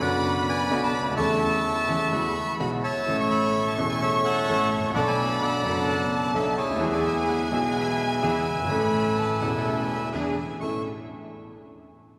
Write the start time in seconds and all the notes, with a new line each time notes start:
Already playing: B5
0.00 F#1 F#2 D3 F#3 B3 D4 F#4 B4 D5 F#5
0.38 F#5
0.49 B4 D5 G#5
0.70 B1 B2 D3 F#3 B3 D4 F#4
0.84 A5
0.94 B5
1.01 C#2
1.06 D2
1.11 D#2
1.16 E2 E3 A3 C#4 E4 A4 E5 A5 C#6
1.64 A5
1.88 E2 E3 A3 C#4 E4 A4
2.11 E2 E3 G#3 B3 E4 F#4 B5
2.59 B1 B2 E3 G#3 B3 E4 F#4 B5
2.84 C#5 E5 A5
3.06 A1 A2 E3 A3 C#4 E4 A4 C#6
3.21 C#6
3.31 E5 B5
3.67 A5
3.76 E1 E2 E3 A3 C#4 E4 A4
3.89 G#5
4.01 C#5 E5 A5
4.24 A4 C#5 F#5
4.48 A1 A2 E3 A3 C#4 E4 A4
4.71 E5
4.78 G#1
4.84 A1
4.90 A#1
4.94 B1 B2 F#3 B3 D4 A4 D5 F#5 B5
5.08 G#5
5.31 A5
5.42 A4 D5 F#5
5.63 F#1 F#2 F#3 B3 D4 A4
5.68 A4
5.89 A5
6.34 B1 B2 F#3 B3 D4 A4 E5
6.57 E4 G#4 C#5
6.64 C#2
6.69 D2
6.76 D#2 E3
6.80 E2 G#3 B3 E4 G#4 G#5
6.93 D5
7.06 E5
7.28 F#5
7.50 B1 B2 E3 G#3 B3 E4 G#4 E5
7.54 G#4
7.66 G#5
7.72 F#5
7.79 B4 E5 G#5
8.22 E2 E3 G#3 B3 E4 G#4
8.53 F#1
8.59 G1
8.64 G#1
8.69 A1 A2 E3 A3 C#4 E4 A4 B5
8.73 A4
9.16 A5
9.40 E1 E2 E3 A3 C#4 E4 A4 F#5
9.45 A4
9.57 D#5
9.65 E5
10.12 E2 E3 B3 D4 E4 G#4 G#5
10.59 A1 C#4 E4 A4 E5 C#6